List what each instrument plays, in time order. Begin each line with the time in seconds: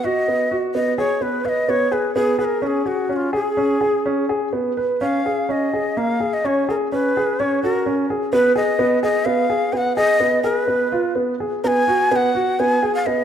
0.04 grand piano F#4, shakuhachi D#5
0.28 grand piano B3
0.51 grand piano F#4
0.74 grand piano B3, shakuhachi D#5
0.98 grand piano G#4, shakuhachi C#5
1.21 grand piano B3, shakuhachi B4
1.45 grand piano B4, shakuhachi D#5 F5
1.69 grand piano B3, shakuhachi C#5
1.92 grand piano G#4, shakuhachi B4
2.15 grand piano B3, shakuhachi G#4
2.39 grand piano G#4, shakuhachi B4
2.45 shakuhachi A#4
2.62 grand piano C#4, shakuhachi A#4
2.67 shakuhachi G#4
2.86 shakuhachi F#4, grand piano G#4
3.09 grand piano C#4, shakuhachi F#4
3.16 shakuhachi F4
3.33 grand piano G#4, shakuhachi G#4
3.57 grand piano C#4
3.81 grand piano G#4
4.06 grand piano C#4
4.29 grand piano G#4
4.53 grand piano B3
4.77 grand piano B4
5.01 grand piano C#4, shakuhachi F5
5.26 grand piano G#4
5.49 grand piano C#4, shakuhachi D#5
5.73 grand piano G#4
5.97 grand piano A#3, shakuhachi F5
6.20 grand piano G#4
6.34 shakuhachi D#5
6.44 grand piano C#4, shakuhachi C#5
6.69 grand piano G#4, shakuhachi A#4
6.92 grand piano C#4, shakuhachi B4
7.17 grand piano G#4
7.40 grand piano C#4, shakuhachi C#5
7.63 grand piano F#4, shakuhachi A#4
7.86 grand piano C#4
8.10 grand piano G#4
8.33 grand piano B3, shakuhachi B4
8.56 grand piano G#4, shakuhachi D#5
8.79 grand piano B3
9.03 grand piano G#4, shakuhachi D#5
9.25 grand piano B3, shakuhachi F5
9.50 grand piano G#4
9.73 grand piano B3, shakuhachi G#5
9.77 shakuhachi F#5
9.96 grand piano G#4, shakuhachi D#5
10.20 grand piano B3
10.43 grand piano G#4, shakuhachi A#4
10.57 shakuhachi B4
10.68 grand piano B3
10.92 grand piano F4
11.16 grand piano B3
11.40 grand piano G#4
11.64 grand piano B3, shakuhachi G#5 A#5
11.88 grand piano F#4
12.11 grand piano B3, shakuhachi G#5
12.16 shakuhachi F#5
12.35 grand piano F#4
12.60 grand piano B3, shakuhachi G#5
12.83 grand piano G#4
12.95 shakuhachi F5
13.06 grand piano B3, shakuhachi D#5